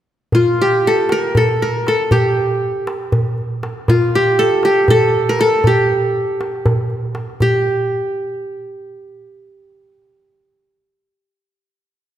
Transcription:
0.32 1.69 F4 medium
0.32 darbuka dum medium
0.61 1.87 G4 medium
0.87 1.18 A4 medium
0.97 darbuka ka soft
1.09 1.43 A#4 medium
1.09 darbuka tek medium
1.35 1.68 A4 medium
1.35 darbuka dum medium
1.61 1.94 A#4 medium
1.61 darbuka ka soft
1.87 3.05 A4 medium
1.87 darbuka tek medium
2.11 3.37 G4 medium
2.11 darbuka dum medium
2.75 darbuka ka soft
2.87 darbuka tek medium
3.12 darbuka dum medium
3.38 darbuka ka soft
3.63 darbuka tek medium
3.88 5.24 F4 medium
3.88 darbuka dum medium
4.15 4.64 G4 medium
4.39 4.90 A4 medium
4.63 5.67 G4 medium
4.63 darbuka tek medium
4.88 5.35 A4 medium
4.88 darbuka dum medium
5.14 darbuka ka soft
5.29 5.47 A#4 medium
5.39 6.58 A4 medium
5.39 darbuka tek soft
5.64 7.13 G4 medium
5.64 darbuka dum medium
5.91 darbuka ka soft
6.03 darbuka ka soft
6.15 darbuka ka soft
6.28 darbuka ka soft
6.41 darbuka tek medium
6.66 darbuka dum medium
6.90 darbuka ka soft
7.15 darbuka tek medium
7.40 11.29 G4 medium
7.40 darbuka dum medium

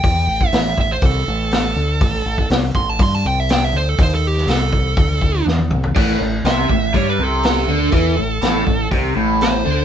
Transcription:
0.00 0.49 G5 loud
0.00 kick loud
0.00 open hi-hat medium
0.04 0.27 E2 medium
0.27 0.51 A1 medium
0.41 kick medium
0.49 0.76 A1 loud
0.49 0.76 E5 loud
0.49 open hi-hat medium
0.54 snare loud
0.78 1.01 A1 medium
0.78 0.91 E5 medium
0.78 kick medium
0.92 1.05 C5 medium
1.01 1.25 C2 loud
1.01 2.48 A4 loud
1.01 kick loud
1.01 open hi-hat medium
1.28 1.74 A1 medium
1.51 snare loud
1.51 open hi-hat medium
1.76 2.00 D2 medium
2.01 2.24 A1 medium
2.01 kick loud
2.01 open hi-hat medium
2.26 2.49 A1 medium
2.38 kick medium
2.50 2.74 C2 loud
2.50 snare loud
2.50 open hi-hat medium
2.75 2.98 A1 medium
2.75 2.89 C6 medium
2.75 kick medium
2.89 3.01 A5 medium
2.99 3.23 G2 loud
2.99 3.15 C6 medium
2.99 kick loud
2.99 open hi-hat medium
3.15 3.26 A5 medium
3.25 3.71 C2 medium
3.25 3.40 G5 medium
3.40 3.51 E5 loud
3.49 3.64 G5 medium
3.49 snare loud
3.49 open hi-hat medium
3.64 3.75 E5 medium
3.73 3.96 D2 medium
3.73 3.89 C5 medium
3.89 4.00 A4 loud
3.99 4.45 D#2 loud
3.99 4.13 C5 medium
3.99 kick loud
3.99 open hi-hat medium
4.15 4.27 A4 medium
4.27 4.49 G4 medium
4.37 snare soft
4.47 4.93 C2 loud
4.47 5.45 A4 loud
4.47 snare loud
4.47 open hi-hat medium
4.73 kick medium
4.96 5.43 D2 loud
4.96 kick loud
4.96 open hi-hat medium
5.21 kick medium
5.46 5.69 E2 loud
5.46 snare medium
5.59 high tom medium
5.71 5.94 C2 medium
5.71 mid tom medium
5.84 floor tom medium
5.96 6.19 A1 medium
5.96 6.20 A2 loud
5.96 kick loud
5.96 crash loud
6.21 6.44 A1 medium
6.21 6.41 A2 medium
6.44 6.68 C2 loud
6.44 6.69 C3 medium
6.44 6.94 E5 medium
6.44 snare loud
6.44 open hi-hat medium
6.69 6.93 A1 medium
6.69 6.90 A2 medium
6.69 kick medium
6.94 7.17 G2 medium
6.94 7.18 G3 loud
6.94 7.07 C#5 medium
6.94 kick medium
6.94 open hi-hat medium
7.09 7.23 B4 medium
7.19 7.65 C2 medium
7.19 7.68 C3 medium
7.23 7.45 A4 medium
7.43 8.88 A4 medium
7.43 snare loud
7.43 open hi-hat medium
7.57 snare soft
7.68 7.91 D2 medium
7.68 7.92 D3 loud
7.92 8.16 E2 medium
7.92 8.16 E3 loud
7.92 kick loud
7.92 open hi-hat medium
8.18 8.41 A1 medium
8.18 8.37 A2 medium
8.42 8.65 A1 loud
8.42 8.65 A2 medium
8.42 snare loud
8.42 open hi-hat medium
8.66 8.90 A1 medium
8.66 8.86 A2 medium
8.66 kick medium
8.91 9.14 C2 medium
8.91 9.15 C3 loud
8.91 kick medium
8.91 open hi-hat medium
9.16 9.62 A1 medium
9.16 9.64 A2 medium
9.41 9.85 C5 medium
9.41 snare loud
9.41 open hi-hat medium
9.65 9.85 D2 medium
9.65 9.85 D3 medium

